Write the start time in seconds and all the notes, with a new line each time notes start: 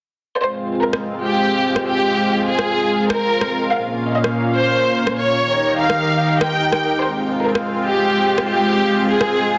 0.41 G#3 C4 F4 C5
0.59 F5
0.72 G#3
0.82 A#4
0.93 cross-stick
1.24 G4
1.76 cross-stick
1.86 G4
2.48 G#4
2.59 cross-stick
3.10 A#4, cross-stick
3.41 cross-stick
3.72 A#2 A#3 C#4 F5
3.85 A#4
4.14 D#5
4.24 cross-stick
4.55 C5
5.07 cross-stick
5.17 C#5
5.38 D#3 D#4 G4 A#4 A#5
5.55 G5
5.79 F5
5.90 cross-stick
6.41 G5, cross-stick
6.72 cross-stick
7.03 G#3 C4 F4 C5
7.15 F5
7.32 G#3
7.44 A#4
7.55 cross-stick
7.86 G4
8.38 cross-stick
8.48 G4
9.10 G#4
9.21 cross-stick